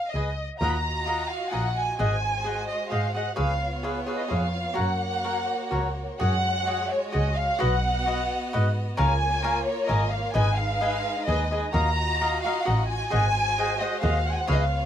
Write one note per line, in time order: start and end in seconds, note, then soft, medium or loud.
0.00 0.13 F5 medium
0.11 0.45 C#2 medium
0.11 0.48 D#5 medium
0.15 0.29 G#4 soft
0.15 0.29 B4 medium
0.15 0.29 D#5 soft
0.15 0.30 G#5 medium
0.59 1.22 D#2 medium
0.59 1.99 F4 medium
0.59 0.75 F4 medium
0.59 1.99 F#4 medium
0.59 0.76 A#4 medium
0.59 1.99 D#5 medium
0.59 0.76 D#5 medium
0.59 0.66 A#5 loud
0.63 0.77 F#5 medium
0.70 1.31 A#5 loud
0.70 0.76 B5 medium
1.06 1.22 F4 medium
1.06 1.22 A#4 soft
1.06 1.22 D#5 medium
1.06 1.22 F#5 medium
1.29 1.47 F5 medium
1.48 1.67 F4 medium
1.48 1.76 F#5 medium
1.48 1.54 G#5 medium
1.52 1.84 A#1 medium
1.52 1.68 A#4 soft
1.52 1.68 D#5 medium
1.52 1.68 F#5 medium
1.75 1.95 G#5 medium
1.96 2.14 G#4 medium
1.96 2.14 C5 medium
1.96 2.15 F#5 medium
1.96 2.64 G#5 loud
2.00 2.60 G#1 medium
2.00 3.37 G#3 medium
2.00 3.37 F#4 medium
2.00 3.37 C5 medium
2.00 2.15 D#5 medium
2.44 2.60 G#4 medium
2.44 2.60 C5 medium
2.44 2.61 D#5 medium
2.44 2.61 F#5 medium
2.68 2.91 D#5 medium
2.90 3.22 G#2 medium
2.90 3.05 G#4 soft
2.90 3.06 C5 medium
2.90 3.06 D#5 medium
2.90 3.13 F5 medium
2.90 3.06 F#5 medium
3.14 3.28 G#4 soft
3.14 3.29 C5 medium
3.14 3.29 D#5 soft
3.14 3.35 F#5 medium
3.14 3.30 F#5 medium
3.36 3.98 C#2 medium
3.36 4.75 B3 medium
3.36 4.75 F4 medium
3.36 3.52 G#4 medium
3.36 3.52 B4 medium
3.36 3.51 C#5 medium
3.36 4.75 C#5 medium
3.36 3.52 F5 medium
3.36 3.80 F5 medium
3.83 3.98 G#4 medium
3.83 3.99 B4 medium
3.83 3.98 C#5 medium
3.83 3.99 F5 medium
4.06 4.21 G#4 medium
4.06 4.21 B4 medium
4.06 4.21 C#5 soft
4.06 4.22 F5 medium
4.15 4.30 D#5 medium
4.28 4.61 F2 medium
4.28 4.44 G#4 medium
4.28 4.45 B4 medium
4.28 4.44 C#5 medium
4.28 4.45 F5 medium
4.28 4.78 F5 loud
4.74 6.19 A#3 medium
4.74 4.90 F#4 medium
4.74 4.91 A#4 medium
4.74 4.91 C#5 medium
4.74 4.91 F#5 medium
4.78 5.39 F#2 medium
4.78 6.19 F#4 medium
4.78 6.19 C#5 medium
4.78 5.99 F#5 loud
5.24 5.39 F#4 soft
5.24 5.39 A#4 medium
5.24 5.39 C#5 medium
5.24 5.39 F#5 medium
5.71 6.04 C#2 medium
5.71 5.87 F#4 medium
5.71 5.87 A#4 medium
5.71 5.87 C#5 medium
5.71 5.87 F#5 medium
6.20 6.82 F#2 medium
6.20 7.59 G#3 medium
6.20 6.35 F#4 medium
6.20 7.59 F#4 medium
6.20 6.35 G#4 medium
6.20 6.35 C#5 medium
6.20 7.59 C#5 medium
6.20 6.88 F#5 loud
6.20 6.36 F#5 medium
6.66 6.82 F#4 medium
6.66 6.82 G#4 medium
6.66 6.82 C#5 medium
6.66 6.83 F#5 medium
6.91 7.14 C#5 medium
7.12 7.45 C#2 medium
7.12 7.28 F#4 soft
7.12 7.28 G#4 medium
7.12 7.28 C#5 medium
7.12 7.36 D#5 medium
7.12 7.29 F#5 medium
7.36 7.60 F5 loud
7.58 8.21 B1 medium
7.58 8.97 B3 medium
7.58 7.74 F#4 medium
7.58 8.96 F#4 medium
7.58 7.75 B4 medium
7.58 7.75 D#5 medium
7.58 8.96 D#5 medium
7.58 8.75 F#5 loud
7.58 7.75 F#5 medium
8.06 8.20 F#4 medium
8.06 8.21 B4 medium
8.06 8.21 D#5 medium
8.06 8.22 F#5 medium
8.53 8.84 G#2 medium
8.53 8.67 F#4 medium
8.53 8.67 B4 medium
8.53 8.67 D#5 medium
8.53 8.68 F#5 medium
8.97 9.58 C#2 loud
8.97 10.35 A#3 medium
8.97 10.34 F4 medium
8.97 9.12 A#4 medium
8.97 9.12 C#5 medium
8.97 10.34 C#5 medium
8.97 9.12 F5 medium
8.97 9.12 G#5 medium
8.97 9.63 G#5 loud
9.42 9.57 A#4 medium
9.42 9.58 C#5 medium
9.42 9.58 F5 medium
9.42 9.58 G#5 medium
9.67 9.89 C#5 medium
9.87 10.20 G#1 medium
9.87 10.02 A#4 medium
9.87 10.03 C#5 medium
9.87 10.12 D#5 medium
9.87 10.03 F5 medium
9.87 10.04 G#5 medium
10.12 10.35 F5 loud
10.33 10.96 G#1 loud
10.33 11.74 G#3 medium
10.33 11.74 D#4 medium
10.33 10.49 G#4 medium
10.33 10.49 B4 medium
10.33 11.74 B4 medium
10.33 10.49 D#5 medium
10.33 10.57 G#5 loud
10.33 10.50 G#5 medium
10.56 11.26 F5 loud
10.81 10.95 G#4 medium
10.81 10.96 B4 medium
10.81 10.96 D#5 medium
10.81 10.96 G#5 medium
11.26 11.58 D#2 medium
11.26 11.42 G#4 medium
11.26 11.43 B4 medium
11.26 11.60 D#5 medium
11.26 11.43 D#5 medium
11.26 11.43 G#5 medium
11.51 11.65 G#4 soft
11.51 11.66 B4 soft
11.51 11.65 D#5 soft
11.51 11.66 G#5 medium
11.73 12.35 D#2 loud
11.73 13.12 F4 medium
11.73 11.88 F#4 medium
11.73 13.11 F#4 medium
11.73 11.89 A#4 medium
11.73 11.89 D#5 medium
11.73 13.12 D#5 medium
11.73 11.89 F5 medium
11.73 12.40 A#5 loud
12.21 12.35 F#4 medium
12.21 12.36 A#4 medium
12.21 12.36 D#5 medium
12.21 12.36 F5 medium
12.42 12.58 F#4 medium
12.42 12.58 A#4 medium
12.42 12.64 F5 medium
12.46 12.59 D#5 medium
12.46 12.59 F5 medium
12.64 12.97 A1 medium
12.64 12.80 F#4 medium
12.64 12.81 A#4 medium
12.64 12.81 D#5 medium
12.64 12.81 F5 medium
12.64 12.90 F#5 medium
12.87 13.09 G#5 loud
13.10 13.73 G#1 medium
13.10 14.47 G#3 medium
13.10 14.47 F#4 medium
13.10 13.26 G#4 medium
13.10 13.26 C5 medium
13.10 14.48 C5 medium
13.10 13.27 D#5 medium
13.10 13.27 F#5 medium
13.10 13.77 G#5 loud
13.58 13.73 G#4 medium
13.58 13.73 C5 medium
13.58 13.73 D#5 medium
13.58 13.73 F#5 medium
13.80 13.95 G#4 medium
13.80 13.95 C5 medium
13.80 14.03 D#5 medium
13.80 13.95 D#5 medium
13.80 13.95 F#5 medium
14.01 14.33 D#2 medium
14.01 14.17 G#4 medium
14.01 14.17 C5 medium
14.01 14.18 D#5 medium
14.01 14.24 F5 medium
14.01 14.18 F#5 medium
14.27 14.32 F#5 loud
14.33 14.38 G#5 medium
14.38 14.49 F#5 loud
14.47 14.86 C#2 medium
14.47 14.86 B3 medium
14.47 14.86 F4 medium
14.47 14.62 G#4 medium
14.47 14.63 B4 medium
14.47 14.63 C#5 medium
14.47 14.86 C#5 loud
14.47 14.55 F5 loud
14.47 14.63 F5 medium
14.54 14.62 D#5 medium
14.62 14.86 F5 medium